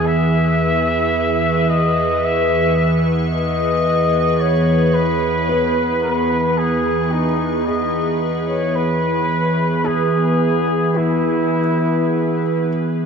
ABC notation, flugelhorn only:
X:1
M:4/4
L:1/16
Q:1/4=55
K:E
V:1 name="Flugelhorn"
e6 d2 e3 z d4 | c2 B4 B2 G2 D2 d2 z c | B4 G4 E6 z2 |]